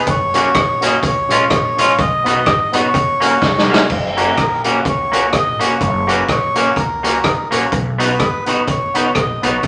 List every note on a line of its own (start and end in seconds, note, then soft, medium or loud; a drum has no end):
0.07 0.48 F#1 loud
0.07 0.85 C#5 loud
0.07 kick loud
0.07 closed hi-hat medium
0.33 0.47 A#3 medium
0.33 0.46 C#4 loud
0.33 0.47 C#4 medium
0.33 0.46 F#4 medium
0.33 0.48 F#4 medium
0.33 0.47 A#4 medium
0.33 0.47 C#5 loud
0.33 closed hi-hat medium
0.54 0.96 A#1 medium
0.54 kick loud
0.54 cross-stick loud
0.54 closed hi-hat medium
0.80 0.95 A#3 medium
0.80 0.94 C#4 medium
0.80 0.95 C#4 loud
0.80 0.94 F#4 medium
0.80 0.95 F#4 loud
0.80 0.94 A#4 medium
0.80 0.94 C#5 loud
0.80 closed hi-hat medium
0.86 1.05 D#5 medium
1.03 1.26 C#2 medium
1.03 1.51 C#5 medium
1.03 kick loud
1.03 closed hi-hat medium
1.28 1.47 A#1 loud
1.28 1.43 G#3 medium
1.28 1.42 C#4 medium
1.28 1.43 C#4 medium
1.28 1.42 F4 medium
1.28 1.43 F4 medium
1.28 1.42 G#4 medium
1.28 1.42 C#5 medium
1.28 closed hi-hat medium
1.50 1.91 A#1 loud
1.50 2.01 C#5 medium
1.50 kick loud
1.50 cross-stick loud
1.50 closed hi-hat medium
1.76 1.91 G#3 medium
1.76 1.90 C#4 medium
1.76 1.91 C#4 medium
1.76 1.90 F4 medium
1.76 1.91 F4 loud
1.76 1.90 G#4 medium
1.76 1.90 C#5 loud
1.76 closed hi-hat medium
1.99 2.39 B1 loud
1.99 2.76 D#5 loud
1.99 kick loud
1.99 closed hi-hat medium
2.24 2.37 B3 medium
2.24 2.38 B3 medium
2.24 2.38 D#4 medium
2.24 2.39 D#4 medium
2.24 2.38 F#4 medium
2.24 2.39 F#4 medium
2.24 2.38 B4 loud
2.24 closed hi-hat medium
2.46 2.87 G#1 medium
2.46 kick loud
2.46 cross-stick loud
2.46 closed hi-hat medium
2.72 2.85 B3 medium
2.72 2.86 B3 medium
2.72 2.86 D#4 medium
2.72 2.86 F#4 medium
2.72 2.87 F#4 medium
2.72 2.86 B4 loud
2.72 closed hi-hat medium
2.78 3.67 C#5 medium
2.94 3.35 F#1 medium
2.94 kick loud
2.94 closed hi-hat medium
3.20 3.33 A#3 medium
3.20 3.34 A#3 medium
3.20 3.34 C#4 medium
3.20 3.34 F#4 medium
3.20 3.34 A#4 loud
3.20 closed hi-hat medium
3.42 3.83 F1 medium
3.42 kick loud
3.42 snare medium
3.58 snare medium
3.69 3.81 A#3 medium
3.69 3.82 A#3 medium
3.69 3.82 C#4 medium
3.69 3.82 F#4 medium
3.69 3.82 A#4 medium
3.74 snare loud
3.90 4.31 F#1 loud
3.90 kick loud
3.90 crash medium
4.17 4.29 A#3 medium
4.17 4.30 C#4 medium
4.17 4.29 C#4 medium
4.17 4.30 F#4 medium
4.17 4.30 A#4 loud
4.17 4.62 A#4 loud
4.17 closed hi-hat medium
4.37 4.78 A#1 medium
4.37 kick loud
4.37 cross-stick medium
4.37 closed hi-hat medium
4.64 4.77 A#3 medium
4.64 4.77 C#4 medium
4.64 4.77 F#4 medium
4.64 4.78 F#4 medium
4.64 4.77 A#4 loud
4.64 closed hi-hat medium
4.85 5.26 C#2 medium
4.85 5.36 C#5 medium
4.85 kick loud
4.85 closed hi-hat medium
5.12 5.25 A#3 medium
5.12 5.25 C#4 medium
5.12 5.25 F#4 medium
5.12 5.25 A#4 loud
5.12 closed hi-hat medium
5.33 5.60 B1 loud
5.33 5.62 D#5 loud
5.33 kick loud
5.33 cross-stick loud
5.33 closed hi-hat medium
5.59 5.78 F1 medium
5.59 5.72 A#3 medium
5.59 5.73 A#3 medium
5.59 5.73 C#4 medium
5.59 5.73 F#4 medium
5.59 5.73 A#4 loud
5.59 5.81 C#5 medium
5.59 closed hi-hat loud
5.81 6.22 F#1 loud
5.81 6.10 C#5 medium
5.81 kick loud
5.81 closed hi-hat medium
6.07 6.20 A#3 medium
6.07 6.20 C#4 medium
6.07 6.21 C#4 medium
6.07 6.21 F#4 medium
6.07 6.21 A#4 loud
6.07 6.29 B4 medium
6.07 closed hi-hat medium
6.28 6.69 A#1 medium
6.28 6.80 C#5 loud
6.28 kick loud
6.28 cross-stick medium
6.28 closed hi-hat medium
6.55 6.68 A#3 medium
6.55 6.68 C#4 medium
6.55 6.69 C#4 medium
6.55 6.68 F#4 medium
6.55 6.69 F#4 medium
6.55 6.69 A#4 medium
6.55 closed hi-hat medium
6.76 7.17 C#2 medium
6.76 7.49 A#4 medium
6.76 kick loud
6.76 closed hi-hat medium
7.03 7.16 A#3 medium
7.03 7.16 C#4 medium
7.03 7.16 F#4 medium
7.03 7.17 F#4 medium
7.03 7.16 A#4 loud
7.03 closed hi-hat medium
7.24 7.48 F#1 medium
7.24 kick loud
7.24 cross-stick loud
7.24 closed hi-hat medium
7.50 7.70 A#1 medium
7.50 7.64 A#3 medium
7.50 7.64 C#4 medium
7.50 7.64 F#4 medium
7.50 7.65 F#4 medium
7.50 7.65 A#4 loud
7.50 closed hi-hat medium
7.72 8.13 B1 loud
7.72 kick loud
7.72 closed hi-hat medium
7.98 8.11 B3 medium
7.98 8.12 D#4 medium
7.98 8.12 F#4 medium
7.98 8.12 F#4 loud
7.98 8.12 B4 medium
7.98 8.44 B4 loud
7.98 closed hi-hat medium
8.19 8.61 G#1 medium
8.19 kick loud
8.19 cross-stick medium
8.19 closed hi-hat medium
8.46 8.59 B3 medium
8.46 8.60 B3 medium
8.46 8.59 D#4 medium
8.46 8.60 D#4 medium
8.46 8.59 F#4 medium
8.46 8.61 F#4 medium
8.46 8.60 B4 loud
8.46 closed hi-hat medium
8.67 9.08 F#1 medium
8.67 9.13 C#5 medium
8.67 kick loud
8.67 closed hi-hat medium
8.94 9.07 B3 medium
8.94 9.07 D#4 medium
8.94 9.08 D#4 medium
8.94 9.07 F#4 medium
8.94 9.08 F#4 medium
8.94 9.08 B4 medium
8.94 closed hi-hat medium
9.15 9.39 A#1 loud
9.15 9.44 D#5 medium
9.15 kick loud
9.15 cross-stick loud
9.15 closed hi-hat medium
9.42 9.61 B1 medium
9.42 9.55 B3 medium
9.42 9.55 D#4 medium
9.42 9.56 D#4 medium
9.42 9.55 F#4 medium
9.42 9.56 F#4 medium
9.42 9.55 B4 medium
9.42 9.62 C#5 medium
9.42 closed hi-hat medium
9.63 9.67 C#2 loud
9.63 9.67 C#5 medium
9.63 kick loud
9.63 closed hi-hat medium